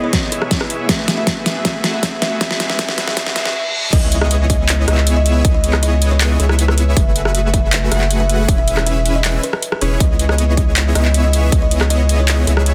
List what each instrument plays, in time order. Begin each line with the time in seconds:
Already playing: supersaw synth B3 E4 G#4 C#5 D#5, clean electric guitar B3 E4 G#4
0.04 kalimba C#5
0.13 kick, snare, closed hi-hat
0.32 supersaw synth B3 E4 G#4 C#5 E5, kalimba G#4, closed hi-hat
0.42 cross-stick
0.51 kick, snare, closed hi-hat
0.61 kalimba B4, cross-stick
0.70 closed hi-hat
0.87 clean electric guitar A3 B3 E4, supersaw synth A3 F#4 G#4 B4 E5, kalimba E5, kick, snare, closed hi-hat
0.91 clean electric guitar G#4
1.08 snare, closed hi-hat
1.18 kalimba E5
1.27 kick, snare, closed hi-hat
1.44 clean electric guitar A3 B3 E4, kalimba E5, snare, closed hi-hat
1.48 clean electric guitar G#4
1.63 clean electric guitar A3 B3 E4 G#4, supersaw synth A3 F#4 G#4 B4 E5, kalimba E5, kick, snare, closed hi-hat
1.84 snare, closed hi-hat
1.94 kalimba E5
2.03 kick, snare, closed hi-hat
2.20 clean electric guitar A3 B3 E4, kalimba E5, snare, closed hi-hat
2.24 clean electric guitar G#4
2.39 clean electric guitar G#3 B3 E4 G#4, supersaw synth G#3 F#4 G#4 B4 E5, kalimba E5, kick, snare, closed hi-hat
2.51 snare
2.60 snare, closed hi-hat
2.70 kalimba E5, snare
2.77 clean electric guitar G#3 B3 E4, supersaw synth G#3 F#4 G#4 B4 E5, kalimba E5, kick, snare, closed hi-hat
2.81 clean electric guitar G#4
2.89 snare
2.98 snare, closed hi-hat
3.08 kalimba E5, snare
3.15 clean electric guitar G#3 B3 E4, supersaw synth G#3 F#4 G#4 B4 E5, kick, snare, closed hi-hat, reverse cymbal
3.19 clean electric guitar G#4
3.27 snare
3.34 clean electric guitar G#3 B3 E4, supersaw synth G#3 F#4 G#4 B4 E5, kalimba E5, snare, closed hi-hat
3.38 clean electric guitar G#4
3.46 snare
3.93 sub bass C#2, supersaw synth B3 E4 G#4 C#5 D#5, kalimba D#5, kick, closed hi-hat, crash, impact
4.12 closed hi-hat
4.21 kalimba D#5, cross-stick
4.31 closed hi-hat
4.50 kalimba D#5, kick, closed hi-hat
4.69 clap, closed hi-hat
4.88 sub bass C#2, supersaw synth B3 E4 G#4 C#5 E5, kalimba D#5, cross-stick, closed hi-hat
4.97 clap
5.07 closed hi-hat
5.17 kalimba D#5
5.26 closed hi-hat
5.45 sub bass C#2, supersaw synth B3 E4 G#4 C#5 D#5, kick, closed hi-hat
5.54 kalimba D#5
5.64 closed hi-hat
5.73 cross-stick, clap
5.83 kalimba D#5, closed hi-hat
6.02 closed hi-hat
6.11 kalimba C#5
6.21 clap, closed hi-hat
6.40 sub bass C#2, supersaw synth B3 E4 G#4 C#5 E5, kalimba G#4, closed hi-hat
6.49 cross-stick
6.59 closed hi-hat
6.68 kalimba B4, cross-stick
6.78 closed hi-hat
6.97 sub bass F#1, supersaw synth A3 F#4 G#4 B4 E5, kalimba E5, kick, closed hi-hat
7.16 closed hi-hat
7.25 kalimba E5, cross-stick
7.35 closed hi-hat
7.54 kalimba E5, kick, closed hi-hat
7.73 clap, closed hi-hat
7.92 sub bass F#1, supersaw synth A3 F#4 G#4 B4 F#5, kalimba E5, cross-stick, closed hi-hat
8.01 clap
8.11 closed hi-hat
8.20 kalimba E5
8.30 closed hi-hat
8.49 sub bass E1, supersaw synth C#4 E4 G#4 B4 E5, kick, closed hi-hat
8.58 kalimba E5
8.68 closed hi-hat
8.77 cross-stick, clap
8.87 kalimba E5, closed hi-hat
9.06 closed hi-hat
9.15 kalimba D#5
9.24 clap, closed hi-hat
9.43 kalimba B4, closed hi-hat
9.53 cross-stick
9.62 closed hi-hat
9.72 kalimba G#4, cross-stick
9.81 sub bass E1, supersaw synth C#4 E4 G#4 B4 C#5, closed hi-hat
10.00 sub bass C#2, supersaw synth B3 E4 G#4 C#5 D#5, kalimba D#5, kick, closed hi-hat
10.19 closed hi-hat
10.29 kalimba D#5, cross-stick
10.38 closed hi-hat
10.57 kalimba D#5, kick, closed hi-hat
10.76 clap, closed hi-hat
10.95 sub bass C#2, supersaw synth B3 E4 G#4 C#5 E5, kalimba D#5, cross-stick, closed hi-hat
11.05 clap
11.14 closed hi-hat
11.24 kalimba D#5
11.33 closed hi-hat
11.52 sub bass C#2, supersaw synth B3 E4 G#4 C#5 D#5, kick, closed hi-hat
11.62 kalimba D#5
11.71 closed hi-hat
11.81 cross-stick, clap
11.90 kalimba D#5, closed hi-hat
12.09 closed hi-hat
12.19 kalimba C#5
12.28 clap, closed hi-hat
12.47 sub bass C#2, supersaw synth B3 E4 G#4 C#5 E5, kalimba G#4, closed hi-hat
12.57 cross-stick
12.66 closed hi-hat